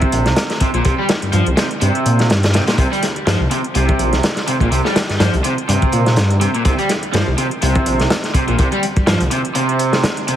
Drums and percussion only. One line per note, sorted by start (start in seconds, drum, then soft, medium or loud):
0.01 kick medium
0.01 closed hi-hat soft
0.12 closed hi-hat medium
0.26 snare soft
0.26 closed hi-hat soft
0.36 snare loud
0.36 closed hi-hat soft
0.36 closed hi-hat medium
0.50 snare soft
0.50 closed hi-hat soft
0.60 kick medium
0.60 closed hi-hat medium
0.74 closed hi-hat soft
0.85 kick loud
0.85 closed hi-hat soft
0.85 closed hi-hat medium
1.09 snare loud
1.09 closed hi-hat medium
1.22 closed hi-hat soft
1.33 closed hi-hat medium
1.33 closed hi-hat soft
1.46 closed hi-hat soft
1.57 snare loud
1.57 closed hi-hat medium
1.71 closed hi-hat soft
1.81 closed hi-hat medium
1.81 closed hi-hat soft
1.95 closed hi-hat soft
2.06 closed hi-hat medium
2.19 snare soft
2.19 closed hi-hat soft
2.30 snare loud
2.30 closed hi-hat soft
2.30 closed hi-hat medium
2.43 snare loud
2.43 closed hi-hat soft
2.43 closed hi-hat medium
2.54 snare loud
2.54 closed hi-hat medium
2.68 snare loud
2.68 closed hi-hat soft
2.68 closed hi-hat medium
2.78 kick loud
2.78 closed hi-hat soft
2.78 closed hi-hat medium
2.93 closed hi-hat soft
3.03 snare soft
3.03 closed hi-hat medium
3.16 closed hi-hat soft
3.27 snare loud
3.27 closed hi-hat soft
3.27 closed hi-hat medium
3.51 closed hi-hat medium
3.64 closed hi-hat soft
3.75 closed hi-hat medium
3.75 closed hi-hat soft
3.89 kick medium
3.89 closed hi-hat soft
3.99 closed hi-hat medium
4.13 snare soft
4.13 closed hi-hat soft
4.23 snare loud
4.23 closed hi-hat soft
4.23 closed hi-hat medium
4.36 snare soft
4.36 closed hi-hat soft
4.48 closed hi-hat medium
4.61 kick medium
4.61 closed hi-hat soft
4.72 closed hi-hat soft
4.72 closed hi-hat medium
4.85 snare soft
4.96 snare loud
4.96 closed hi-hat medium
5.09 snare soft
5.09 closed hi-hat soft
5.20 snare loud
5.20 closed hi-hat soft
5.20 closed hi-hat medium
5.33 closed hi-hat soft
5.44 closed hi-hat medium
5.58 closed hi-hat soft
5.69 closed hi-hat soft
5.69 closed hi-hat loud
5.82 kick medium
5.82 closed hi-hat soft
5.92 closed hi-hat medium
6.06 snare soft
6.06 closed hi-hat soft
6.16 snare medium
6.16 closed hi-hat medium
6.16 closed hi-hat soft
6.30 closed hi-hat soft
6.41 closed hi-hat medium
6.55 closed hi-hat soft
6.65 kick loud
6.65 closed hi-hat medium
6.65 closed hi-hat soft
6.79 closed hi-hat soft
6.89 snare soft
6.89 closed hi-hat medium
7.03 closed hi-hat soft
7.13 snare loud
7.13 closed hi-hat soft
7.13 closed hi-hat medium
7.38 closed hi-hat medium
7.51 closed hi-hat soft
7.62 closed hi-hat soft
7.62 closed hi-hat medium
7.75 kick loud
7.75 closed hi-hat soft
7.86 closed hi-hat medium
8.00 snare soft
8.00 closed hi-hat soft
8.10 snare loud
8.10 closed hi-hat soft
8.10 closed hi-hat medium
8.24 snare soft
8.24 closed hi-hat soft
8.34 kick medium
8.34 closed hi-hat medium
8.48 closed hi-hat soft
8.59 kick loud
8.59 closed hi-hat soft
8.59 closed hi-hat medium
8.72 closed hi-hat soft
8.83 closed hi-hat medium
8.96 kick medium
8.96 closed hi-hat soft
9.07 snare loud
9.07 closed hi-hat soft
9.07 closed hi-hat medium
9.20 closed hi-hat soft
9.31 closed hi-hat medium
9.45 closed hi-hat soft
9.55 closed hi-hat medium
9.55 closed hi-hat soft
9.69 closed hi-hat soft
9.79 closed hi-hat medium
9.93 snare soft
9.93 closed hi-hat soft
10.04 snare loud
10.04 closed hi-hat soft
10.04 closed hi-hat medium
10.17 closed hi-hat soft
10.28 closed hi-hat medium